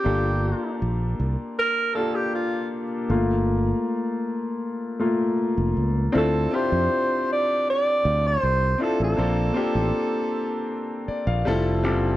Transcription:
<<
  \new Staff \with { instrumentName = "Alto saxophone" } { \time 4/4 \key g \dorian \tempo 4 = 79 g'4 r4 bes'8 a'16 g'16 f'8 r8 | r1 | a'8 c''4 d''8 d''8. c''8. a'16 a'16~ | a'2~ a'8. r4 r16 | }
  \new Staff \with { instrumentName = "Grand piano" } { \time 4/4 \key g \dorian <bes d' f' g' a'>4. r4 <bes d' f' g' a'>4 r8 | <a bes f'>8 r2 <a bes f'>8 r4 | <c' d' e' f' a'>8 <c' d' e' f' g'>4. r4. <c' d' e' f' a'>8 | <bes c' d' f' a'>8 <bes c' d' f' g'>4. r8 d''16 f''16 <g c' e' f' a' a''>8 <g c' e' f' a' d'''>8 | }
  \new Staff \with { instrumentName = "Fingered electric bass" } { \clef bass \time 4/4 \key g \dorian g,,8. r16 bes,,8 c,16 r2 r16 | g,,4 r2 r16 f,,16 cis,8 | d,8 r16 f,16 r4. d,8 c,8 r16 a,,16 | bes,,8 r16 a,,16 r4. r16 bes,,16 f,,8 fis,,8 | }
>>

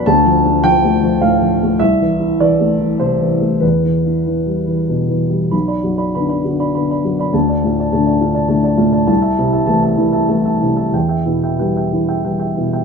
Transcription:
<<
  \new Staff \with { instrumentName = "Upright piano" } { \time 3/4 \key a \minor \tempo 4 = 99 a''4 g''4 f''4 | e''4 d''4 c''4 | b'2 r4 | b''16 <d'' b''>16 fis'16 <d'' b''>16 b''16 <d'' b''>16 fis'16 <d'' b''>16 b''16 <d'' b''>16 fis'16 <d'' b''>16 |
a''16 <d'' a''>16 f'16 <d'' a''>16 a''16 <d'' a''>16 f'16 <d'' a''>16 a''16 <d'' a''>16 f'16 <d'' a''>16 | a''16 <e'' a''>16 e'16 <e'' a''>16 a''16 <e'' a''>16 e'16 <e'' a''>16 a''16 <e'' a''>16 e'16 <e'' a''>16 | g''16 <e'' g''>16 e'16 <e'' g''>16 g''16 <e'' g''>16 e'16 <e'' g''>16 g''16 <e'' g''>16 e'16 <e'' g''>16 | }
  \new Staff \with { instrumentName = "Upright piano" } { \clef bass \time 3/4 \key a \minor \tuplet 3/2 { d,8 f8 d'8 f8 a8 f8 a,8 f8 a8 } | \tuplet 3/2 { c,8 e8 e'8 e8 a8 e8 c8 e8 a8 } | \tuplet 3/2 { e,8 e8 e'8 e8 g8 e8 b,8 e8 g8 } | b,,8 fis,8 <d b>8 d8 <d b>8 fis,8 |
d,8 a,8 <d a>8 d8 <d a>8 a,8 | c,8 c8 <e a>8 e8 <e a>8 c8 | e,8 b,8 <e g>8 e8 <e g>8 b,8 | }
>>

